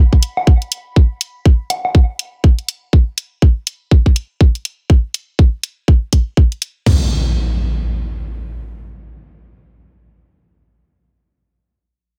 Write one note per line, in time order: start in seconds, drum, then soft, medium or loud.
0.13 kick medium
0.23 closed hi-hat medium
0.37 low woodblock medium
0.47 kick loud
0.62 closed hi-hat soft
0.72 closed hi-hat medium
0.96 kick loud
1.21 closed hi-hat medium
1.45 kick loud
1.70 closed hi-hat medium
1.70 low woodblock medium
1.85 low woodblock medium
1.95 kick loud
2.19 closed hi-hat medium
2.44 kick loud
2.59 closed hi-hat soft
2.69 closed hi-hat medium
2.93 kick loud
3.18 closed hi-hat medium
3.42 kick loud
3.67 closed hi-hat medium
3.91 kick loud
4.06 kick medium
4.16 closed hi-hat medium
4.41 kick loud
4.55 closed hi-hat soft
4.65 closed hi-hat medium
4.90 kick loud
5.14 closed hi-hat medium
5.39 kick loud
5.63 closed hi-hat medium
5.88 kick loud
6.13 kick medium
6.13 closed hi-hat medium
6.37 kick loud
6.52 closed hi-hat soft
6.62 closed hi-hat medium
6.86 kick medium
6.86 floor tom medium
6.86 crash medium
6.86 impact medium